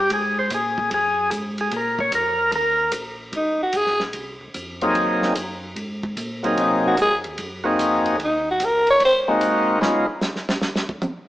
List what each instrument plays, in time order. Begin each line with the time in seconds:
0.00 tonewheel organ G4
0.10 tonewheel organ G#2 G#4, kick, ride
0.39 tonewheel organ C5
0.50 tonewheel organ A#2 G#4, kick, hi-hat pedal, ride
0.78 kick
0.91 tonewheel organ F#2 G#4, kick, ride
1.31 tonewheel organ G#2, kick, hi-hat pedal, ride
1.58 tonewheel organ G#4, ride
1.71 tonewheel organ A#2, kick, ride
1.76 tonewheel organ A#4
1.99 tonewheel organ C#5, kick
2.12 tonewheel organ F2 A#4, kick, hi-hat pedal, ride
2.52 tonewheel organ D#2 A#4, kick, ride
2.92 tonewheel organ A#1, kick, hi-hat pedal, ride
3.33 tonewheel organ G#1, alto saxophone D#4, kick, ride
3.60 tonewheel organ G#1, alto saxophone F#4
3.73 tonewheel organ A#1, kick, hi-hat pedal, ride
3.77 alto saxophone G#4
3.86 snare
4.00 snare
4.13 tonewheel organ C2, kick, ride
4.41 tonewheel organ C2
4.54 tonewheel organ F2, kick, hi-hat pedal, ride
4.81 tonewheel organ F#3 A#3 C4 D#4 G#4, ride
4.95 tonewheel organ D#2, kick, ride
5.07 tonewheel organ C2
5.21 tonewheel organ G#1, snare
5.35 tonewheel organ F#2, kick, hi-hat pedal, ride
5.76 tonewheel organ G#2, kick, ride
6.03 kick
6.17 tonewheel organ A#2, kick, hi-hat pedal, ride
6.43 tonewheel organ F#3 A#3 C4 D#4 G#4, ride
6.57 tonewheel organ C3, alto saxophone D#4, kick, ride
6.87 alto saxophone F#4
6.97 tonewheel organ G#2, kick, hi-hat pedal, ride
7.02 alto saxophone G#4
7.11 tonewheel organ F#2
7.24 tonewheel organ D#2, ride
7.38 tonewheel organ F#2, kick, ride
7.64 tonewheel organ A#3 C4 D#4 F#4 G#4
7.79 tonewheel organ F2, kick, hi-hat pedal, ride
8.06 ride
8.20 tonewheel organ D#2, kick, ride
8.24 alto saxophone D#4
8.51 alto saxophone F#4
8.60 tonewheel organ C#2, kick, hi-hat pedal, ride
8.65 alto saxophone A#4
8.87 alto saxophone C#5, ride
9.00 tonewheel organ G#1, kick, ride
9.05 alto saxophone C5
9.28 tonewheel organ G#3 A#3 C4 D#4 F#4
9.41 tonewheel organ A#1, kick, hi-hat pedal, ride
9.81 tonewheel organ C#2 G#3 B3 C#4 D#4 F4, snare
10.21 snare, hi-hat pedal
10.36 snare
10.49 snare
10.62 snare
10.76 snare
10.89 kick
11.02 hi-hat pedal, high tom